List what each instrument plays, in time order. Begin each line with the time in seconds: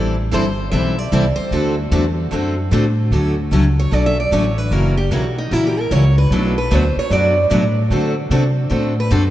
Already playing: upright bass A1, steel-string acoustic guitar E3 G3 C4 E4 A4
0.33 upright bass G1, steel-string acoustic guitar E3 G3 C4 E4 A4 C5
0.71 upright bass B1, steel-string acoustic guitar E3 G3 C4 E4 A4 E5
0.98 steel-string acoustic guitar D5
1.12 upright bass C2, steel-string acoustic guitar E3 G3 C4 E4 A4
1.36 steel-string acoustic guitar C5, muted upright bass stroke
1.51 upright bass D2, steel-string acoustic guitar D3 A3 C4 F#4 A4
1.91 upright bass E2, steel-string acoustic guitar D3 A3 C4 F#4 A4
2.32 upright bass F#2, steel-string acoustic guitar D3 A3 C4 F#4 A4
2.72 upright bass A2, steel-string acoustic guitar D3 A3 C4 F#4 A4
3.11 upright bass D2, steel-string acoustic guitar D3 F#3 A3 C#4 F#4 A4
3.51 upright bass C#2, steel-string acoustic guitar D3 F#3 A3 C#4 F#4 A4
3.79 steel-string acoustic guitar C#5
3.92 upright bass B1, steel-string acoustic guitar D3 F#3 A3 C#4 F#4 A4 D5
4.06 steel-string acoustic guitar E5
4.20 steel-string acoustic guitar D5
4.32 upright bass A1, steel-string acoustic guitar D3 F#3 A3 C#4 F#4 A4 C#5
4.58 steel-string acoustic guitar B4
4.71 upright bass F#1, steel-string acoustic guitar C#3 E3 F#3 A#3 C#4 E4 F#4 A#4
4.97 steel-string acoustic guitar G4
5.11 upright bass B1, steel-string acoustic guitar C#3 E3 F#3 A#3 C#4 E4 F#4 A#4
5.38 steel-string acoustic guitar D#4
5.51 upright bass A#1, steel-string acoustic guitar C#3 E3 F#3 A#3 C#4 E4 F#4 A#4
5.67 steel-string acoustic guitar G4
5.80 steel-string acoustic guitar A#4
5.91 upright bass C#2, steel-string acoustic guitar C#3 E3 F#3 A#3 C#4 E4 F#4 A#4 C#5
6.18 steel-string acoustic guitar B4
6.31 upright bass B1, steel-string acoustic guitar B2 F#3 A3 D4 F#4 A4 B4
6.58 steel-string acoustic guitar B4
6.71 upright bass D2, steel-string acoustic guitar B2 F#3 A3 D4 F#4 B4 C5
6.96 steel-string acoustic guitar C#5, muted upright bass stroke
7.10 upright bass F#2, steel-string acoustic guitar B2 F#3 A3 D4 F#4 B4 D5
7.51 upright bass A2, steel-string acoustic guitar B2 F#3 A3 D4 F#4 B4
7.90 upright bass D3, steel-string acoustic guitar D3 A3 C4 F#4 A4
8.30 upright bass C3, steel-string acoustic guitar D3 A3 C4 F#4 A4
8.70 upright bass A2, steel-string acoustic guitar D3 A3 C4 F#4 A4
9.00 steel-string acoustic guitar B4
9.11 upright bass F#2, steel-string acoustic guitar D3 A3 C4 F#4 A4 C5